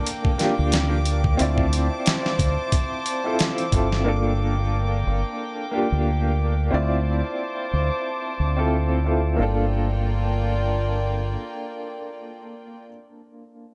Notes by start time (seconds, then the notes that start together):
Already playing: A#3 D4 F4 A4 G5 D6
0.07 closed hi-hat
0.25 kick
0.38 A#3 D4 F4 G4, snare, closed hi-hat
0.59 D2
0.72 snare, closed hi-hat
1.05 closed hi-hat
1.24 kick
1.37 D2 C4 E4 F4 C5 A5, closed hi-hat
1.42 D5
1.58 kick
1.73 closed hi-hat
2.06 snare, closed hi-hat
2.26 snare
2.39 D2, kick, closed hi-hat
2.72 kick, closed hi-hat
3.06 closed hi-hat
3.24 C4 E4 F4 A4
3.39 snare, closed hi-hat
3.58 closed hi-hat
3.72 G1 C4 E4 F4 A4, kick, closed hi-hat
3.92 snare
4.04 A#3 D4 F4 A4 G5
5.07 G1
5.71 A#3 D4 F4 G4
5.92 D2
6.71 D2 C4 E4 F4 C5 D5 A5 D6
7.73 D2
8.40 D2
8.57 C4 E4 F4 A4
9.04 C4 E4 F4 A4
9.36 G1 A#3 D4 F4 D5 G5
9.42 A4